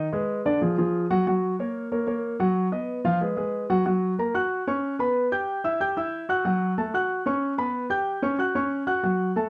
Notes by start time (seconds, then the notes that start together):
0.13 G#3 G#4 B4
0.45 D3 D4 D5
0.61 F3 F4 G#4
0.78 F3 F4 G#4
1.10 F#3 F#4 F#5
1.27 F#3 F#4 F#5
1.59 A#3 A#4 C#5
1.92 A#3 A#4 C#5
2.07 A#3 A#4 C#5
2.40 F#3 F#4 F#5
2.72 B3 B4 D#5
3.05 F3 F4 F5
3.21 G#3 G#4 B4
3.37 G#3 G#4 B4
3.70 F#3 F#4 F#5
3.85 F#3 F#4 F#5
4.18 A#3 A#4 A#5
4.34 F#4 F#5 F#6
4.67 C#4 C#5 C#6
4.99 B3 B4 B5
5.32 G4 G5 G6
5.64 E4 E5 E6
5.80 G4 G5 G6
5.97 E4 E5 E6
6.29 F#4 F#5 F#6
6.45 F#3 F#4 F#5
6.78 A3 A4 A5
6.94 F#4 F#5 F#6
7.26 C#4 C#5 C#6
7.58 B3 B4 B5
7.90 G4 G5 G6
8.22 C#4 C#5 C#6
8.39 F#4 F#5 F#6
8.55 C#4 C#5 C#6
8.87 F#4 F#5 F#6
9.03 F#3 F#4 F#5
9.36 A3 A4 A5